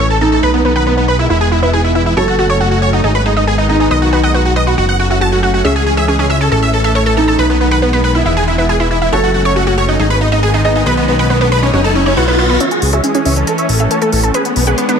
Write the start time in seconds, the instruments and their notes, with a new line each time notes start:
Already playing: analog synth bass A1, supersaw synth E3 A3 C#4
0.10 supersaw synth A4, synth pluck A5
0.21 felt piano D#4, supersaw synth A4, synth arpeggio sound A4, synth pluck A5
0.32 supersaw synth A4, synth arpeggio sound A5, synth pluck A5
0.43 analog synth bass B1, supersaw synth D#3 G#3 B3 B4, synth arpeggio sound B4, synth pluck B5
0.54 supersaw synth B3, synth pluck B4
0.65 supersaw synth B3, synth arpeggio sound B4, synth pluck B4
0.76 supersaw synth B4, synth arpeggio sound F#5, synth pluck B5
0.86 supersaw synth B3, synth pluck B4, synth arpeggio sound B4
0.97 supersaw synth B3, synth pluck B4
1.08 supersaw synth B4, synth arpeggio sound B4, synth pluck B5
1.19 supersaw synth E4, synth pluck E5, synth arpeggio sound B5
1.30 analog synth bass E1, supersaw synth E3 B3 E4, synth arpeggio sound E4, synth pluck E5
1.41 supersaw synth G#4, synth pluck G#5
1.52 synth arpeggio sound E4, supersaw synth E4, synth pluck E5
1.62 supersaw synth E4, synth arpeggio sound B4, synth pluck E5
1.73 synth arpeggio sound E4, supersaw synth G#4, synth pluck G#5
1.84 supersaw synth E4, synth pluck E5
1.95 supersaw synth E4, synth arpeggio sound E4, synth pluck E5
2.06 supersaw synth E4, synth pluck E5, synth arpeggio sound E5
2.17 analog synth bass F#1, supersaw synth F#3 A3 C#4 C#5, synth arpeggio sound F#4, felt piano A4, synth pluck C#6
2.27 supersaw synth F#4, synth pluck F#5
2.39 supersaw synth F#4, synth arpeggio sound F#4, synth pluck F#5
2.49 supersaw synth C#5, synth arpeggio sound C#5, synth pluck C#6
2.60 supersaw synth F#4, synth arpeggio sound F#4, synth pluck F#5
2.71 supersaw synth F#4, synth pluck F#5
2.82 synth arpeggio sound F#4, supersaw synth C#5, synth pluck C#6
2.93 supersaw synth D#4, synth pluck D#5, synth arpeggio sound F#5
3.04 analog synth bass G#1, supersaw synth D#3 G#3 B3 D#4, synth arpeggio sound G#4, synth pluck D#5
3.15 supersaw synth B4, synth pluck B5
3.26 supersaw synth D#4, synth arpeggio sound G#4, synth pluck D#5
3.37 supersaw synth D#4, synth arpeggio sound D#5, synth pluck D#5
3.47 synth arpeggio sound G#4, supersaw synth G#4, synth pluck G#5
3.58 supersaw synth D#4, synth pluck D#5
3.69 felt piano D#4, supersaw synth D#4, synth arpeggio sound G#4, synth pluck D#5
3.80 supersaw synth D#4, synth pluck D#5, synth arpeggio sound G#5
3.91 analog synth bass B1, synth arpeggio sound B4, supersaw synth D#5, synth pluck D#6
4.02 supersaw synth F#4, synth pluck F#5
4.13 supersaw synth F#4, synth arpeggio sound B4, synth pluck F#5
4.23 supersaw synth D#5, synth arpeggio sound F#5, synth pluck D#6
4.34 supersaw synth F#4, synth arpeggio sound B4, synth pluck F#5
4.45 supersaw synth F#4, synth pluck F#5
4.56 synth arpeggio sound B4, supersaw synth D#5, synth pluck D#6
4.67 supersaw synth F#4, synth pluck F#5, synth arpeggio sound B5
4.78 analog synth bass F#1, supersaw synth F#3 A3 C#4 F#4, synth arpeggio sound F#4, synth pluck F#5
4.89 supersaw synth F#5, synth pluck F#6
5.00 supersaw synth F#4, synth arpeggio sound F#5, synth pluck F#5
5.10 synth arpeggio sound E4, supersaw synth F#4, synth pluck F#5
5.21 synth arpeggio sound F#4, supersaw synth A5, synth pluck A6
5.32 supersaw synth F#4, synth pluck F#5
5.43 synth arpeggio sound F#4, supersaw synth F#4, synth pluck F#5
5.54 synth arpeggio sound F#4, supersaw synth F#4, synth pluck F#5
5.65 analog synth bass C#2, supersaw synth E3 G#3 E5, synth arpeggio sound C#4, felt piano G#4, synth pluck E6
5.76 supersaw synth G#4, synth pluck G#5
5.87 supersaw synth G#4, synth pluck G#5
5.97 synth arpeggio sound G#4, supersaw synth E5, synth pluck E6
6.08 synth arpeggio sound C#4, supersaw synth G#4, synth pluck G#5
6.19 synth arpeggio sound C#4, supersaw synth G#4, synth pluck G#5
6.30 synth arpeggio sound C#4, supersaw synth E5, synth pluck E6
6.41 supersaw synth A4, synth arpeggio sound C#5, synth pluck A5
6.52 analog synth bass A1, supersaw synth E3 A3 A4, synth arpeggio sound A4, synth pluck A5
6.62 supersaw synth E5, synth pluck E6
6.73 supersaw synth A4, synth pluck A5
6.84 supersaw synth A4, synth arpeggio sound E5, synth pluck A5
6.95 synth arpeggio sound A4, supersaw synth C#5, synth pluck C#6
7.06 synth arpeggio sound A4, supersaw synth A4, synth pluck A5
7.17 felt piano D#4, synth arpeggio sound A4, supersaw synth A4, synth pluck A5
7.28 supersaw synth A4, synth pluck A5, synth arpeggio sound A5
7.39 analog synth bass B1, supersaw synth D#3 G#3 B3 B4, synth arpeggio sound B4, synth pluck B5
7.50 supersaw synth B3, synth pluck B4
7.60 supersaw synth B3, synth pluck B4
7.71 supersaw synth B4, synth arpeggio sound F#5, synth pluck B5
7.82 supersaw synth B3, synth pluck B4, synth arpeggio sound B4
7.93 supersaw synth B3, synth arpeggio sound B4, synth pluck B4
8.04 synth arpeggio sound B4, supersaw synth B4, synth pluck B5
8.15 supersaw synth E4, synth pluck E5, synth arpeggio sound B5
8.26 analog synth bass E1, supersaw synth E3 E4, synth arpeggio sound E4, synth pluck E5
8.37 supersaw synth G#4, synth pluck G#5
8.48 supersaw synth E4, synth pluck E5
8.58 supersaw synth E4, synth arpeggio sound B4, synth pluck E5
8.69 synth arpeggio sound E4, supersaw synth G#4, synth pluck G#5
8.80 synth arpeggio sound E4, supersaw synth E4, synth pluck E5
8.91 synth arpeggio sound E4, supersaw synth E4, synth pluck E5
9.02 supersaw synth E4, synth arpeggio sound E5, synth pluck E5
9.12 analog synth bass F#1, supersaw synth F#3 A3 C#4 C#5, synth arpeggio sound F#4, felt piano A4, synth pluck C#6, riser
9.23 supersaw synth F#4, synth pluck F#5
9.34 supersaw synth F#4, synth pluck F#5
9.45 supersaw synth C#5, synth arpeggio sound C#5, synth pluck C#6
9.56 supersaw synth F#4, synth arpeggio sound F#4, synth pluck F#5
9.67 supersaw synth F#4, synth arpeggio sound F#4, synth pluck F#5
9.78 synth arpeggio sound F#4, supersaw synth C#5, synth pluck C#6
9.88 supersaw synth D#4, synth pluck D#5, synth arpeggio sound F#5
9.99 analog synth bass G#1, supersaw synth D#3 G#3 B3 D#4, synth arpeggio sound G#4, synth pluck D#5
10.10 supersaw synth B4, synth pluck B5
10.21 supersaw synth D#4, synth pluck D#5
10.32 supersaw synth D#4, synth arpeggio sound D#5, synth pluck D#5
10.43 supersaw synth G#4, synth arpeggio sound G#4, synth pluck G#5
10.54 supersaw synth D#4, synth arpeggio sound G#4, synth pluck D#5
10.64 supersaw synth D#4, synth arpeggio sound G#4, felt piano D#5, synth pluck D#5
10.75 supersaw synth D#4, synth pluck D#5, synth arpeggio sound G#5
10.86 analog synth bass B1, supersaw synth B4, synth arpeggio sound B4, synth pluck B5
10.97 supersaw synth B3, synth pluck B4
11.08 supersaw synth B3, synth pluck B4
11.19 supersaw synth B4, synth arpeggio sound F#5, synth pluck B5
11.30 supersaw synth B3, synth arpeggio sound B4, synth pluck B4
11.41 supersaw synth B3, synth arpeggio sound B4, synth pluck B4
11.52 supersaw synth B4, synth arpeggio sound B4, synth pluck B5
11.63 supersaw synth C#4, synth pluck C#5, synth arpeggio sound B5
11.73 analog synth bass F#1, supersaw synth C#3 F#3 A3 C#4, synth arpeggio sound F#4, synth pluck C#5
11.84 supersaw synth A4, synth pluck A5
11.95 supersaw synth C#4, synth pluck C#5
12.06 supersaw synth C#4, synth pluck C#5, synth arpeggio sound C#5
12.17 analog synth bass B1, supersaw synth D#3 B3 F#4, synth arpeggio sound B4, synth pluck F#5
12.28 supersaw synth B3, synth pluck B4, synth arpeggio sound B4
12.39 supersaw synth B3, synth pluck B4, synth arpeggio sound B4
12.50 supersaw synth B3, synth pluck B4, synth arpeggio sound B5
12.60 supersaw synth E3 G#3 C#4 C#5 E5, synth arpeggio sound C#4, closed hi-hat, riser
12.71 supersaw synth G#4, closed hi-hat
12.82 analog synth bass C#2, supersaw synth G#4, open hi-hat
12.93 synth arpeggio sound G#4, supersaw synth C#5 E5, closed hi-hat
13.04 synth arpeggio sound C#4, supersaw synth G#4, closed hi-hat
13.15 synth arpeggio sound C#4, supersaw synth G#4, closed hi-hat
13.25 analog synth bass C#2, synth arpeggio sound C#4, supersaw synth C#5 E5, open hi-hat
13.36 supersaw synth A4, synth arpeggio sound C#5, closed hi-hat
13.47 supersaw synth A3 A4, synth arpeggio sound A4, closed hi-hat
13.58 supersaw synth C#5 E5, closed hi-hat
13.69 analog synth bass A1, supersaw synth A4, open hi-hat
13.80 supersaw synth A4, synth arpeggio sound E5, closed hi-hat
13.91 synth arpeggio sound A4, supersaw synth A4 C#5, closed hi-hat
14.02 synth arpeggio sound A4, supersaw synth A4, closed hi-hat
14.12 analog synth bass A1, synth arpeggio sound A4, supersaw synth A4, open hi-hat
14.23 supersaw synth A4, synth arpeggio sound A5, closed hi-hat
14.34 supersaw synth D#3 G#3 B3 G#4 B4, synth arpeggio sound B4, closed hi-hat
14.45 supersaw synth B3, closed hi-hat
14.56 analog synth bass B1, supersaw synth B3, open hi-hat
14.67 supersaw synth G#4 B4, synth arpeggio sound F#5, closed hi-hat
14.78 supersaw synth B3, synth arpeggio sound B4, closed hi-hat
14.89 supersaw synth B3, synth arpeggio sound B4, closed hi-hat